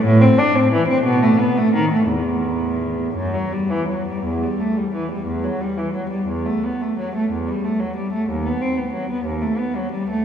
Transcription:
\new Staff \with { instrumentName = "Cello" } { \clef bass \time 6/8 \key e \minor \tempo 4. = 59 a,16 c'16 d'16 c'16 e16 c'16 b,16 a16 b16 a16 dis16 a16 | e,4. fis,16 fis16 g16 e16 fis16 g16 | e,16 g16 a16 g16 e16 g16 e,16 fis16 g16 e16 fis16 g16 | e,16 a16 b16 a16 fis16 a16 e,16 g16 a16 fis16 g16 a16 |
dis,16 b16 c'16 b16 fis16 b16 dis,16 a16 b16 fis16 g16 a16 | }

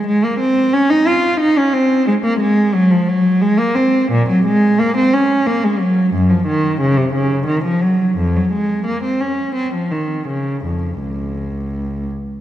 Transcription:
\new Staff \with { instrumentName = "Cello" } { \clef bass \time 3/4 \key aes \mixolydian \tempo 4 = 88 aes16 bes16 c'8 des'16 ees'16 f'8 ees'16 des'16 c'8 | aes16 bes16 aes8 ges16 f16 ges8 aes16 bes16 c'8 | \key des \major bes,16 ges16 aes8 bes16 c'16 des'8 bes16 aes16 ges8 | ges,16 f16 ees8 des16 c16 des8 ees16 f16 ges8 |
f,16 ges16 aes8 bes16 c'16 des'8 c'16 f16 ees8 | des8 f,8 des,4. r8 | }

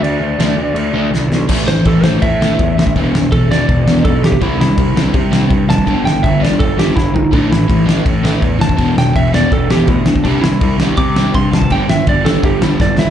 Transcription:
<<
  \new Staff \with { instrumentName = "Lead electric guitar" } { \time 4/4 \key a \minor \tempo 4 = 165 d''2. r4 | r8 c''8 a'8 c''8 e''2 | r4 a'8 d''4. a'8 g'8 | e'8 e'4 r2 a''8~ |
a''8 g''8 e''8 d''8 a'8 g'8 e'8 dis'8 | d'8 e'4 r2 a''8~ | a''8 g''8 e''8 d''8 a'8 g'8 e'8 d'8 | d'8 e'4 r8 d'''4 c'''8 a''8 |
g''8 e''8 d''8 a'8 g'8 e'8 <d' d''>8 <e' e''>8 | }
  \new Staff \with { instrumentName = "Overdriven electric guitar" } { \clef bass \time 4/4 \key a \minor r4 <d a d'>8 r4 <d a d'>8 r4 | <a, e a>8 <a, e>8 <a, e>8 <a, e a>8 <a, e>8 <a, e a>8 <a, e>8 <a, e>8 | <e, b, e>8 <e, b,>8 <e, b,>8 <e, b, e>8 <e, b,>8 <e, b, e>8 <e, b,>8 <e, b,>8 | <c g c'>8 <c g>8 <c g>8 <c g c'>8 <c g>8 <c g c'>8 <c g>8 <c g>8 |
<g, d g>8 <g, d>8 <g, d>8 <g, d g>8 <g, d>8 <g, d g>8 <g, d>8 <g, d>8 | <a, e a>8 <a, e>8 <a, e>8 <a, e a>8 <a, e>8 <a, e a>8 <a, e>8 <a, e>8 | <e, b, e>8 <e, b,>8 <e, b,>8 <e, b, e>8 <e, b,>8 <e, b, e>8 <e, b,>8 <e, b,>8 | <c g c'>8 <c g>8 <c g>8 <c g c'>8 <c g>8 <c g c'>8 <c g>8 <c g>8 |
<g, d g>8 <g, d>8 <g, d>8 <g, d g>8 <g, d>8 <g, d g>8 <g, d>8 <g, d>8 | }
  \new Staff \with { instrumentName = "Picked electric bass" } { \clef bass \time 4/4 \key a \minor d,8 d,8 d,8 d,8 d,8 d,8 c,8 b,,8 | a,,8 a,,8 a,,8 a,,8 a,4 e,8 a,,8 | e,,8 e,,8 e,,4 e,,8 e,,8 b,,4 | c,8 c,8 c,8 c,8 c4 g,8 f,,8 |
g,,8 g,,8 g,,4 g,,8 g,,8 g,,4 | a,,8 a,,8 a,,8 a,,8 a,4 e,8 f,,8 | e,,8 e,,8 e,,4 e,,8 e,,8 d,4 | c,8 c,8 c,8 c,8 c4 g,8 f,,8 |
g,,8 g,,8 g,,4 g,,8 g,,8 g,,4 | }
  \new DrumStaff \with { instrumentName = "Drums" } \drummode { \time 4/4 cymc4 <cymc sn>4 cymc4 sn8 sn8 | <cymc bd>8 sn8 <cymc bd>8 sn8 <cymc bd>8 sn8 <cymc bd>8 sn16 bd16 | <cymc bd>8 sn8 <cymc bd>8 sn8 <cymc bd>8 sn8 <cymc bd>8 sn16 bd16 | <cymc bd>8 sn8 <cymc bd>8 sn8 <cymc bd>8 sn8 <cymc bd>8 sn16 bd16 |
<cymc bd>8 sn8 <cymc bd>8 sn8 <cymc bd>8 sn8 <bd sn>8 tomfh8 | <cymc bd>8 sn8 <cymc bd>8 sn8 <cymc bd>8 sn8 <cymc bd>8 sn16 bd16 | <cymc bd>8 sn8 <cymc bd>8 sn8 <cymc bd>8 sn8 <cymc bd>8 sn16 bd16 | <cymc bd>8 sn8 <cymc bd>8 sn8 <cymc bd>8 sn8 <cymc bd>8 sn16 bd16 |
<cymc bd>8 sn8 <cymc bd>8 sn8 <cymc bd>8 sn8 <bd sn>8 sn8 | }
>>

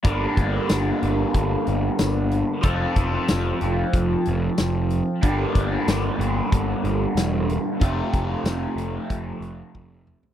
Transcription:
<<
  \new Staff \with { instrumentName = "Overdriven electric guitar" } { \time 4/4 \key g \minor \tempo 4 = 93 <g, d g bes d' bes'>1 | <f c' f' a'>1 | <g, d g bes d' g'>1 | <f, c f a c' f'>1 | }
  \new Staff \with { instrumentName = "Picked electric bass" } { \clef bass \time 4/4 \key g \minor g,,8 g,,8 g,,8 g,,8 g,,8 g,,8 g,,4 | f,,8 f,,8 f,,8 f,,8 f,,8 f,,8 f,,4 | g,,8 g,,8 g,,8 g,,8 g,,8 g,,8 e,,4 | f,,8 f,,8 f,,8 f,,8 f,,8 f,,8 f,,4 | }
  \new DrumStaff \with { instrumentName = "Drums" } \drummode { \time 4/4 <hh bd>8 <hh bd>8 <hh sn tamb>8 hh8 <hh bd>8 hh8 <hh sn tamb>8 hh8 | <hh bd>8 <hh bd>8 <hh sn tamb>8 hh8 <hh bd>8 hh8 <hh sn tamb>8 hh8 | <hh bd>8 <hh bd>8 <hh sn tamb>8 hh8 <hh bd>8 hh8 <hh sn tamb>8 hh8 | <hh bd>8 <hh bd>8 <hh sn tamb>8 hh8 <hh bd>8 hh8 bd8 toml16 tomfh16 | }
>>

